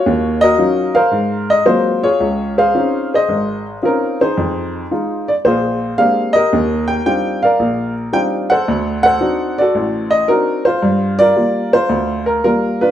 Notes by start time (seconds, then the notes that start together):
Already playing: F4 F#4 C#5
0.06 D#2
0.41 F#4 A#4 D#5
0.58 F#3 C#4 D#4 F4
0.95 A#4 C5 F5
1.11 G#2
1.50 D#5
1.65 F#3 G#3 A#3 C4 F4 C5
2.03 F4 G#4 C#5
2.20 C#2
2.58 G#4 C5 F5
2.74 C4 C#4 D#4 F4
3.14 G#4 C5 D#5
3.29 G#1
3.82 C4 C#4 D#4 F4 A#4
4.21 D#4 G#4 C5
4.37 F2
4.91 G#3 D#4 F4
5.28 D5
5.45 A#1 F4 G#4 C5
5.98 G#3 A#3 C4 D4 G4 F5
6.33 G4 A#4 D#5
6.53 D#2
6.88 G5
7.06 G3 C4 D4 D#4 F4 G5
7.43 A#4 D5 F5
7.59 A#1
8.13 G3 C4 D4 D#4 F4 G5
8.50 A4 C5 F#5
8.68 D2
9.03 A4 C5 F#5
9.21 C4 D4 D#4 F#4
9.58 F#4 A4 D5
9.75 A1
10.11 D#5
10.28 C4 D4 D#4 F#4 A#4
10.65 F4 C5
10.82 G2
11.19 F4 A#4 D5
11.36 G3 A#3 F4
11.73 F4 C5
11.89 D2
12.26 A#4
12.44 G3 A#3 F4 A#4
12.81 D4 F4 B4